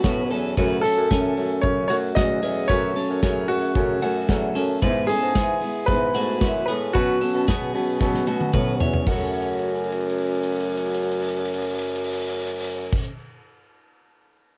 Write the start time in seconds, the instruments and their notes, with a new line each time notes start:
Already playing: upright piano F#4
0.03 bassoon A2, steel-string acoustic guitar B2 F#3 B3 C#4, clean electric guitar B3 F#4, kick, snare, closed hi-hat, tambourine
0.30 bassoon E2, steel-string acoustic guitar F#3 B3 C#4, clean electric guitar C#4 A4, open hi-hat, tambourine
0.57 steel-string acoustic guitar F#2 C#3 F#3 A3 C#4, bassoon F#2, clean electric guitar F#4 B4, kick, closed hi-hat, tambourine
0.81 steel-string acoustic guitar A3 C#4, clean electric guitar C#4 A4, upright piano A4, open hi-hat, tambourine
0.86 steel-string acoustic guitar F#3
0.97 bassoon F#2
1.09 bassoon F#2, steel-string acoustic guitar C#3 F#3 A3 C#4, clean electric guitar C#4 G#5, kick, snare, closed hi-hat, tambourine
1.37 bassoon F#2, steel-string acoustic guitar F#3 A3 C#4, open hi-hat, tambourine
1.61 steel-string acoustic guitar F#2 C#3 F#3 A3 C#4, bassoon F#2, upright piano C#5, kick, closed hi-hat, tambourine
1.88 bassoon F#2, clean electric guitar A3 F#4, steel-string acoustic guitar A3 C#4, upright piano C#5, open hi-hat, tambourine
1.92 steel-string acoustic guitar F#3
2.15 bassoon E2, steel-string acoustic guitar C#3 F#3 A3, clean electric guitar A3 F#4, upright piano D#5, kick, snare, closed hi-hat, tambourine
2.19 steel-string acoustic guitar C#4
2.43 bassoon E2, steel-string acoustic guitar F#3 A3 C#4, clean electric guitar B3 G#4, open hi-hat, tambourine
2.68 steel-string acoustic guitar F#2 C#3 F#3 A3 C#4, bassoon F#2, clean electric guitar F#4 B4, upright piano C#5, kick, closed hi-hat
2.95 steel-string acoustic guitar F#3 A3 C#4, clean electric guitar C#4 A4, open hi-hat, tambourine
3.09 bassoon F#2
3.22 bassoon F#2, steel-string acoustic guitar C#3 F#3 A3 C#4, clean electric guitar C#4 G#4, kick, snare, closed hi-hat, tambourine
3.48 bassoon F#2, steel-string acoustic guitar F#3 A3 C#4, upright piano F#4, open hi-hat, tambourine
3.75 steel-string acoustic guitar F#2 C#3 F#3 A3 C#4, bassoon F#2, kick, closed hi-hat, tambourine
4.02 bassoon F#2, steel-string acoustic guitar F#3 A3 C#4, clean electric guitar A3 F#4, open hi-hat, tambourine
4.29 bassoon E2, steel-string acoustic guitar C#3 F#3 A3 C#4, clean electric guitar A3 F#4, kick, snare, closed hi-hat, tambourine
4.55 bassoon F#2, steel-string acoustic guitar F#3 A3 C#4, clean electric guitar C#4 A4, open hi-hat, tambourine
4.82 steel-string acoustic guitar G#2 E3 G#3 B3 E4, bassoon G#2, clean electric guitar E4 B4, kick, closed hi-hat
5.07 steel-string acoustic guitar B3 E4, clean electric guitar C#4 A4, upright piano G#4, open hi-hat, tambourine
5.12 steel-string acoustic guitar G#3
5.22 bassoon G#2
5.35 bassoon G#2, steel-string acoustic guitar E3 G#3 B3 E4, clean electric guitar B3 G#4, kick, snare, closed hi-hat, tambourine
5.61 steel-string acoustic guitar G#3 B3 E4, open hi-hat
5.86 bassoon G#2, steel-string acoustic guitar G#2 E3 G#3 B3 E4, upright piano B4, kick, closed hi-hat, tambourine
6.14 bassoon G#2, steel-string acoustic guitar G#3 B3 E4, clean electric guitar A3 F#4, open hi-hat, tambourine
6.40 bassoon F#2, steel-string acoustic guitar E3 G#3 B3 E4, clean electric guitar B3 F#4, kick, snare, closed hi-hat, tambourine
6.66 bassoon A2, clean electric guitar B3 G#4, steel-string acoustic guitar B3 E4, upright piano B4, open hi-hat, tambourine
6.70 steel-string acoustic guitar G#3
6.93 steel-string acoustic guitar B2 F#3 B3 C#4, bassoon B2, upright piano F#4, clean electric guitar F#4 B4, kick, closed hi-hat, tambourine
7.20 steel-string acoustic guitar F#3 B3 C#4, clean electric guitar C#4 A4, open hi-hat, tambourine
7.34 bassoon B2
7.47 steel-string acoustic guitar B2 F#3 B3 C#4, bassoon B2, clean electric guitar B3 G#4, kick, snare, closed hi-hat, tambourine
7.74 bassoon B2, steel-string acoustic guitar F#3 B3 C#4, open hi-hat
8.00 steel-string acoustic guitar B2 F#3 B3 C#4, bassoon B2, kick, snare, tambourine
8.14 snare
8.27 bassoon B2, steel-string acoustic guitar F#3 B3 C#4, clean electric guitar A3 F#4, tambourine
8.41 high tom
8.53 bassoon A2, steel-string acoustic guitar B2 F#3 B3 C#4, clean electric guitar F#4 B4, kick, mid tom, tambourine
8.79 bassoon E2, steel-string acoustic guitar F#3 B3 C#4, clean electric guitar E4 C#5, floor tom, tambourine
8.93 floor tom
9.02 steel-string acoustic guitar F#2
9.07 bassoon F#2, steel-string acoustic guitar C#3, clean electric guitar F#4, kick, crash, tambourine
9.11 steel-string acoustic guitar F#3 A3
9.18 steel-string acoustic guitar C#4
9.33 crash
9.42 ride
9.50 crash
9.59 ride
9.67 crash
9.76 ride
9.84 crash
9.92 ride
10.01 crash
10.10 ride
10.18 crash
10.27 ride
10.35 crash
10.43 ride
10.52 crash
10.60 ride
10.69 crash
10.77 ride
10.86 crash
10.94 ride
11.03 crash
11.11 ride
11.20 crash
11.28 ride
11.37 crash
11.45 ride
11.54 crash
11.62 ride
11.70 crash
11.79 ride
11.87 crash
11.96 ride
12.04 crash
12.13 ride
12.22 crash
12.30 ride
12.38 crash
12.47 ride
12.56 crash
12.64 ride
12.92 kick, crash